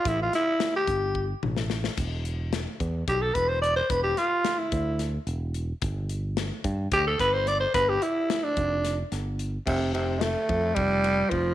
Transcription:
<<
  \new Staff \with { instrumentName = "Tenor saxophone" } { \time 7/8 \key e \phrygian \tempo 4 = 109 e'16 f'16 e'8. g'4 r4 r16 | r2 g'16 a'16 b'16 c''16 d''16 c''16 | b'16 g'16 f'8. e'4 r4 r16 | r2 g'16 a'16 b'16 c''16 d''16 c''16 |
b'16 g'16 e'8. d'4 r4 r16 | c8 c8 a4 g4 f8 | }
  \new Staff \with { instrumentName = "Fingered electric bass" } { \clef bass \time 7/8 \key e \phrygian a,,8 r4 g,,4 a,,4 | e,,4. e,8 b,,8 e,,4 | e,,8 r4 d,4 e,,4 | g,,4. g,8 d,8 g,,4 |
g,,8 r4 f,,4 g,,4 | f,,4. f,8 f,,4 f,,8 | }
  \new DrumStaff \with { instrumentName = "Drums" } \drummode { \time 7/8 <hh bd>8 <hh sn>8 <hh sn>8 <hh bd>8 bd8 toml16 sn16 sn16 sn16 | <cymc hh bd>8 hh8 <hh sn>8 <hh bd>8 <hh bd>8 <hh bd>8 hh8 | <hh bd>8 <hh sn>8 <hh sn>8 <hh bd>8 <hh sn>8 hh8 hh8 | <hh bd>8 hh8 <hh sn>8 <hh bd>8 <hh bd>8 <hh bd sn>8 <hh sn>8 |
<hh bd>8 hh8 <hh sn>8 <hh bd>8 <hh sn>8 <hh sn>8 hh8 | <cymc bd>8 cymr8 <cymr sn>8 <bd cymr>8 <bd cymr>8 <cymr sn>8 <bd cymr>8 | }
>>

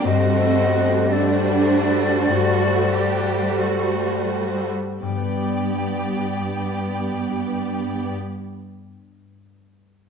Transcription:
<<
  \new Staff \with { instrumentName = "Flute" } { \time 4/4 \key d \phrygian \tempo 4 = 47 ees''4 d''2~ d''8 r8 | g''1 | }
  \new Staff \with { instrumentName = "Violin section" } { \time 4/4 \key d \phrygian c''4 c''2. | d''1 | }
  \new Staff \with { instrumentName = "Harp" } { \time 4/4 \key d \phrygian \tuplet 3/2 { <g, d''>8 a8 fis'8 a'8 c''8 a'8 g,8 a8 fis'8 a'8 c''8 a'8 } | <g, g b d' g' d''>1 | }
  \new Staff \with { instrumentName = "Violin section" } { \time 4/4 \key d \phrygian <a fis'>4 <a fis'>2. | g'1 | }
  \new Staff \with { instrumentName = "Cello section" } { \time 4/4 \key d \phrygian c'4 d'4 fis'8 g'8 fis'8 r8 | g,1 | }
  \new Staff \with { instrumentName = "Viola section" } { \time 4/4 \key d \phrygian g1 | b1 | }
>>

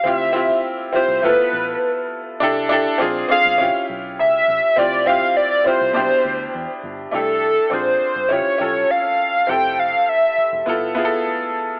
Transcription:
<<
  \new Staff \with { instrumentName = "Analog synth lead" } { \time 4/4 \key c \major \tempo 4 = 102 e''4 r8 c''8 b'4. r8 | r4. f''4 r8 e''4 | d''8 f''8 d''8 c''2 r8 | a'4 c''4 cis''4 f''4 |
g''8 f''8 e''4 r2 | }
  \new Staff \with { instrumentName = "Grand piano" } { \time 4/4 \key c \major <c' e' f' g'>8 <c' e' f' g'>8. r16 <c' e' f' g'>8 <a b e' f' a'>4. r8 | <d' e' g' a'>8 <d' e' g' a'>8 <c' d' f' aes'>8 <c' d' f' aes'>8 <cis' e' f' g'>4. r8 | <c' e' f' g'>8 <c' e' f' g'>8. r16 <c' e' f' g'>8 <b, d' e' g'>4. r8 | <a d' e' g'>4 <c' d' f' aes'>4 <cis' e' f' g'>8 <cis' f' g' a'>4 r8 |
<c' e' g' a'>4. r8 <b e' f' a'>8 <b e' f' aes' a'>4 r8 | }
  \new Staff \with { instrumentName = "Fingered electric bass" } { \clef bass \time 4/4 \key c \major d,4 r8. c,16 g,,16 r16 a,,8 r4 | c,4 bes,,8 r16 g,,16 a,,16 r16 b,,8 cis,8 a,,16 r16 | d,4 r8. c,16 c,16 r16 d,8 e,16 r16 g,,8 | c,4 bes,,8 r16 g,,16 a,,16 r16 b,,8 r4 |
f,,4 r8. e,,16 g,,4 r4 | }
>>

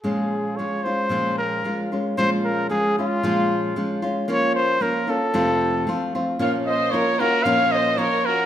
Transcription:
<<
  \new Staff \with { instrumentName = "Trumpet" } { \time 2/4 \key bes \minor \tempo 4 = 113 aes'4 des''8 c''8~ | c''8 bes'4 r8 | c''8 bes'8 aes'8 f'8~ | f'4. r8 |
des''8 c''8 bes'8 a'8~ | a'4. r8 | f''8 ees''8 des''8 bes'8 | f''8 ees''8 des''8 bes'8 | }
  \new Staff \with { instrumentName = "Violin section" } { \time 2/4 \key bes \minor r2 | r2 | r2 | r2 |
r2 | r2 | des''8 c''8 bes'8 ges'8 | des''8 c''8 bes'8 ges'8 | }
  \new Staff \with { instrumentName = "Nylon-string guitar" } { \time 2/4 \key bes \minor <bes, f aes des' f'>4 <f aes des' f'>8 <aes des' f'>8 | <bes, f aes des' f'>4 <f aes des' f'>8 <aes des' f'>8 | <bes, f aes des' f'>4 <f aes des' f'>8 <aes des' f'>8 | <bes, f aes des' f'>4 <f aes des' f'>8 <aes des' f'>8 |
<f bes des' f'>4 <f bes des' f'>8 <bes des' f'>8 | <f, c f a c' f'>4 <f a c' f'>8 <f a c' f'>8 | <bes, f bes des' f'>4 <f bes des' f'>8 <bes des' f'>8 | <bes, f bes des' f'>4 <f bes des' f'>4 | }
>>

